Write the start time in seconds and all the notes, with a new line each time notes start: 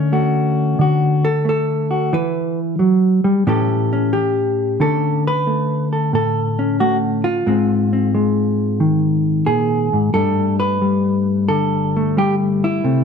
Already playing: D3 A3 C#4
0.12 A3 F#4
0.79 D3 F#4
1.25 A4
1.45 A3
1.49 A4
1.91 F#4
2.13 E3 B4
2.79 F#3
3.24 G3
3.47 A2 E3 C#4 G4 A4
3.93 C#4
4.13 G4
4.80 D3 A3 C#4 A4
5.27 B4
5.47 A3
5.93 A4
6.13 A2 A4
6.59 C#4
6.80 A3 F#4
7.24 F4
7.46 G#2 G#3 C4
7.93 C4
8.15 G#3
8.80 D#3
9.46 A#2 G#4
9.93 G#2
10.14 G2 G3 A3 D4 A4
10.60 B4
10.82 G3
11.48 D3 A4
11.97 A3
12.17 G3 G4
12.64 E4
12.84 C3 A3